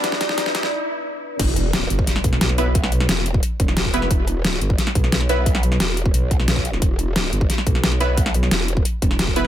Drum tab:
CC |----------------|x---------------|----------------|----------------|
HH |x-x-x-x---------|x-x-x-x-x-x-x-x-|x-x-x-x-x-x-x-x-|x-x-x-x-x-x-x-x-|
SD |oooooooo--------|----o---oo-ooo--|-o-oo------oo--o|----o---oo-ooo--|
BD |----------------|o------o--o-----|o------o--o--o--|o------o--o-----|

CC |----------------|----------------|----------------|
HH |x-x-x-x-x-x-x-x-|x-x-x-x-x-x-x-x-|x-x-x-x-x-x-x-x-|
SD |-o-oo------oo--o|----o---oo-ooo--|-o-oo------oo---|
BD |o------o--o--o--|o------o--o-----|o------o--o--o--|